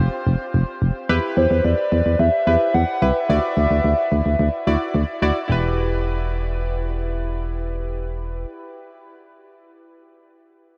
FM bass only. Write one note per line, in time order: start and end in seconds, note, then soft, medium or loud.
0.27 0.37 F1 loud
0.54 0.64 F1 loud
0.82 0.92 F1 medium
1.09 1.19 E2 loud
1.37 1.47 E2 loud
1.51 1.61 E2 loud
1.65 1.74 E2 medium
1.92 2.02 E2 loud
2.06 2.16 E2 medium
2.19 2.29 E2 loud
2.47 2.57 E2 loud
2.75 2.84 E2 loud
3.02 3.12 C2 loud
3.30 3.39 D2 loud
3.57 3.67 D2 loud
3.71 3.81 D2 medium
3.84 3.94 D2 medium
4.12 4.22 D2 loud
4.26 4.36 D2 medium
4.39 4.49 D2 loud
4.67 4.77 D2 medium
4.95 5.04 D2 loud
5.22 5.32 D2 medium
5.50 8.46 E1 loud